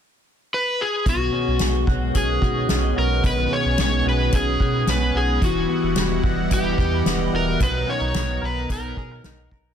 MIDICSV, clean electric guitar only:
0, 0, Header, 1, 2, 480
1, 0, Start_track
1, 0, Key_signature, 5, "major"
1, 0, Tempo, 545455
1, 930, Time_signature, 4, 2, 24, 8
1, 8571, End_track
2, 0, Start_track
2, 0, Title_t, "Clean electric guitar"
2, 0, Program_c, 0, 27
2, 934, Note_on_c, 0, 47, 65
2, 1167, Note_on_c, 0, 61, 50
2, 1409, Note_on_c, 0, 56, 50
2, 1648, Note_on_c, 0, 66, 62
2, 1875, Note_off_c, 0, 61, 0
2, 1885, Note_on_c, 0, 61, 50
2, 2123, Note_off_c, 0, 66, 0
2, 2127, Note_on_c, 0, 66, 55
2, 2357, Note_off_c, 0, 61, 0
2, 2368, Note_on_c, 0, 61, 50
2, 2605, Note_off_c, 0, 66, 0
2, 2608, Note_on_c, 0, 66, 56
2, 2837, Note_off_c, 0, 47, 0
2, 2848, Note_on_c, 0, 47, 74
2, 3076, Note_off_c, 0, 61, 0
2, 3087, Note_on_c, 0, 61, 51
2, 3317, Note_off_c, 0, 56, 0
2, 3328, Note_on_c, 0, 56, 54
2, 3564, Note_off_c, 0, 66, 0
2, 3568, Note_on_c, 0, 66, 64
2, 3792, Note_off_c, 0, 61, 0
2, 3803, Note_on_c, 0, 61, 51
2, 4044, Note_off_c, 0, 66, 0
2, 4048, Note_on_c, 0, 66, 56
2, 4273, Note_off_c, 0, 61, 0
2, 4283, Note_on_c, 0, 61, 51
2, 4526, Note_off_c, 0, 66, 0
2, 4530, Note_on_c, 0, 66, 50
2, 4762, Note_on_c, 0, 52, 74
2, 4769, Note_off_c, 0, 47, 0
2, 4815, Note_off_c, 0, 61, 0
2, 4817, Note_off_c, 0, 56, 0
2, 5007, Note_on_c, 0, 59, 50
2, 5246, Note_on_c, 0, 55, 49
2, 5273, Note_off_c, 0, 66, 0
2, 5485, Note_on_c, 0, 66, 61
2, 5723, Note_off_c, 0, 59, 0
2, 5727, Note_on_c, 0, 59, 57
2, 6205, Note_off_c, 0, 59, 0
2, 6208, Note_on_c, 0, 59, 54
2, 6449, Note_off_c, 0, 66, 0
2, 6452, Note_on_c, 0, 66, 49
2, 6684, Note_on_c, 0, 47, 64
2, 6686, Note_off_c, 0, 52, 0
2, 6736, Note_off_c, 0, 55, 0
2, 6922, Note_off_c, 0, 66, 0
2, 6925, Note_on_c, 0, 61, 56
2, 6951, Note_off_c, 0, 59, 0
2, 7046, Note_off_c, 0, 61, 0
2, 7046, Note_on_c, 0, 63, 45
2, 7165, Note_on_c, 0, 59, 54
2, 7406, Note_on_c, 0, 70, 58
2, 7643, Note_off_c, 0, 63, 0
2, 7653, Note_on_c, 0, 63, 47
2, 7893, Note_off_c, 0, 70, 0
2, 7897, Note_on_c, 0, 68, 53
2, 8021, Note_off_c, 0, 68, 0
2, 8021, Note_on_c, 0, 70, 49
2, 8135, Note_off_c, 0, 63, 0
2, 8139, Note_on_c, 0, 63, 51
2, 8368, Note_off_c, 0, 70, 0
2, 8379, Note_on_c, 0, 70, 56
2, 8571, Note_off_c, 0, 47, 0
2, 8571, Note_off_c, 0, 59, 0
2, 8571, Note_off_c, 0, 63, 0
2, 8571, Note_off_c, 0, 70, 0
2, 8571, End_track
0, 0, End_of_file